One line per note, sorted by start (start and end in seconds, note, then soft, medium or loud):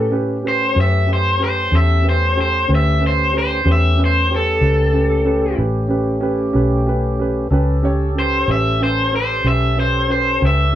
0.00 0.73 A2 medium
0.00 3.61 A3 medium
0.00 3.61 C#4 medium
0.00 3.61 G4 medium
0.00 0.11 A4 medium
0.11 0.35 C#4 medium
0.11 0.36 G4 medium
0.11 0.36 B4 medium
0.43 0.67 C#4 soft
0.43 0.68 G4 soft
0.43 0.68 B4 medium
0.48 0.77 C5 medium
0.74 1.70 F#2 medium
0.74 0.99 C#4 soft
0.74 1.00 G4 soft
0.74 1.00 B4 medium
0.81 1.09 E5 medium
1.06 1.31 C#4 soft
1.06 1.32 G4 soft
1.06 1.32 B4 medium
1.13 1.42 C5 medium
1.38 1.63 C#4 soft
1.38 1.64 G4 soft
1.38 1.64 B4 medium
1.44 1.73 C5 medium
1.72 2.66 E2 medium
1.72 1.96 C#4 soft
1.72 1.97 G4 soft
1.72 1.97 A4 medium
1.76 2.06 E5 medium
2.02 2.27 C#4 soft
2.02 2.28 G4 soft
2.02 2.29 B4 soft
2.09 2.38 C5 medium
2.36 2.60 C#4 soft
2.36 2.61 G4 medium
2.36 2.61 A4 medium
2.41 2.70 C5 medium
2.68 3.63 D2 medium
2.68 2.92 C#4 soft
2.68 2.93 G4 soft
2.68 2.93 B4 medium
2.75 3.03 E5 medium
2.99 3.24 C#4 soft
2.99 3.25 G4 soft
2.99 3.25 B4 medium
3.07 3.35 C5 medium
3.32 3.57 C#4 soft
3.32 3.57 G4 soft
3.32 3.58 B4 medium
3.38 3.67 C5 medium
3.64 4.59 E2 medium
3.64 7.48 A3 medium
3.64 3.89 C#4 medium
3.64 7.48 C#4 medium
3.64 3.90 G4 medium
3.64 7.47 G4 medium
3.64 3.90 B4 medium
3.72 4.00 E5 medium
3.97 4.21 C#4 soft
3.97 4.22 G4 soft
3.97 4.22 B4 medium
4.05 4.33 C5 medium
4.29 4.54 C#4 soft
4.29 4.54 G4 soft
4.29 4.55 B4 medium
4.36 5.58 A4 medium
4.61 5.55 C#2 medium
4.61 4.86 C#4 soft
4.61 4.86 G4 soft
4.61 4.86 B4 medium
4.93 5.18 C#4 soft
4.93 5.18 G4 soft
4.93 5.19 B4 medium
5.25 5.50 C#4 medium
5.25 5.50 G4 medium
5.25 5.50 B4 medium
5.57 6.52 A1 medium
5.57 5.82 C#4 medium
5.57 5.82 G4 medium
5.57 5.83 B4 medium
5.88 6.14 C#4 medium
5.88 6.14 G4 medium
5.88 6.14 B4 medium
6.21 6.46 C#4 medium
6.21 6.46 G4 medium
6.21 6.47 B4 medium
6.53 7.48 B1 medium
6.53 6.78 C#4 medium
6.53 6.79 G4 medium
6.53 6.79 B4 medium
6.86 7.11 C#4 medium
6.86 7.11 G4 medium
6.86 7.12 B4 medium
7.19 7.43 C#4 medium
7.19 7.44 G4 soft
7.19 7.44 B4 medium
7.51 8.44 C#2 medium
7.51 7.75 C#4 medium
7.51 10.75 C#4 medium
7.51 10.75 G4 medium
7.51 7.76 G4 medium
7.51 10.75 A4 medium
7.51 7.76 B4 medium
7.83 8.07 C#4 medium
7.83 8.08 G4 medium
7.83 8.08 C#5 medium
8.15 8.39 C#4 soft
8.15 8.40 G4 soft
8.15 8.41 B4 medium
8.20 8.49 C5 medium
8.48 9.41 A1 medium
8.48 8.72 C#4 soft
8.48 8.72 G4 soft
8.48 8.72 B4 soft
8.48 8.81 E5 medium
8.81 9.04 C#4 soft
8.81 9.04 G4 soft
8.81 9.05 B4 medium
8.81 9.13 C5 medium
9.12 9.36 C#4 soft
9.12 9.36 G4 soft
9.12 9.37 B4 medium
9.16 9.45 C5 medium
9.44 10.38 B1 medium
9.44 9.68 C#4 soft
9.44 9.68 G4 soft
9.44 9.69 B4 medium
9.48 9.77 E5 medium
9.76 10.00 C#4 soft
9.76 10.01 G4 soft
9.76 10.01 B4 soft
9.80 10.09 C5 medium
10.08 10.32 C#4 soft
10.08 10.33 G4 soft
10.08 10.33 B4 medium
10.08 10.41 C5 medium
10.40 10.75 C#2 medium
10.40 10.64 C#4 soft
10.40 10.65 G4 soft
10.40 10.65 B4 medium
10.47 10.75 E5 medium